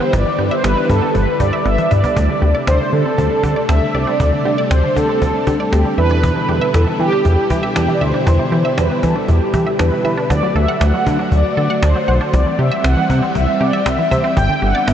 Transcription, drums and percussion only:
0.13 cajon bass
0.39 cajon slap
0.64 cajon slap
0.90 cajon bass
1.15 cajon bass
1.40 cajon bass
1.66 cajon slap
1.78 cajon slap
1.91 cajon bass
2.04 cajon bass
2.17 cajon bass
2.42 cajon slap
2.67 cajon slap
2.93 cajon slap
3.18 cajon bass
3.43 cajon bass
3.69 cajon slap
3.95 cajon slap
4.20 cajon bass
4.45 cajon slap
4.71 cajon slap
4.96 cajon bass
5.22 cajon bass
5.47 cajon bass
5.73 cajon slap
5.98 cajon slap
6.23 cajon bass
6.49 cajon slap
6.74 cajon slap
7.00 cajon slap
7.25 cajon bass
7.50 cajon bass
7.76 cajon slap
8.01 cajon slap
8.27 cajon bass
8.52 cajon slap
8.78 cajon slap
9.03 cajon bass
9.28 cajon bass
9.54 cajon bass
9.79 cajon slap
10.05 cajon slap
10.30 cajon bass
10.43 cajon slap
10.55 cajon slap
10.68 cajon slap
10.81 cajon slap
10.94 cajon slap
11.07 cajon bass
11.19 cajon slap
11.32 cajon bass
11.45 cajon slap
11.57 cajon slap
11.70 cajon slap
11.83 cajon slap
11.95 cajon slap
12.08 cajon slap
12.21 cajon slap
12.33 cajon bass
12.46 cajon slap
12.59 cajon slap
12.72 cajon slap
12.84 cajon slap
12.97 cajon slap
13.10 cajon bass
13.22 cajon slap
13.35 cajon bass
13.48 cajon slap
13.61 cajon slap
13.73 cajon slap
13.86 cajon slap
13.99 cajon slap
14.11 cajon bass
14.24 cajon slap
14.37 cajon bass
14.50 cajon slap
14.62 cajon slap
14.75 cajon slap
14.88 cajon slap

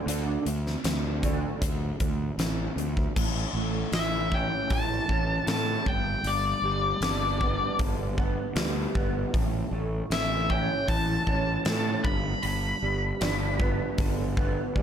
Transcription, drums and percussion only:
0.08 closed hi-hat
0.46 closed hi-hat
0.67 snare
0.84 snare, closed hi-hat
1.23 kick, closed hi-hat
1.62 kick, closed hi-hat
2.00 kick, closed hi-hat
2.39 snare, closed hi-hat
2.78 closed hi-hat
2.97 kick
3.16 kick, crash
3.93 snare, open hi-hat
4.32 kick
4.70 kick, open hi-hat
5.09 kick
5.47 snare, open hi-hat
5.86 kick
6.24 open hi-hat
7.02 snare, open hi-hat
7.41 kick
7.79 kick, open hi-hat
8.18 kick
8.56 snare, open hi-hat
8.95 kick
9.34 kick, open hi-hat
10.11 snare, open hi-hat
10.50 kick
10.88 kick, open hi-hat
11.27 kick
11.65 snare, open hi-hat
12.05 kick
12.43 open hi-hat
13.21 snare, open hi-hat
13.60 kick
13.98 kick, open hi-hat
14.37 kick
14.76 kick

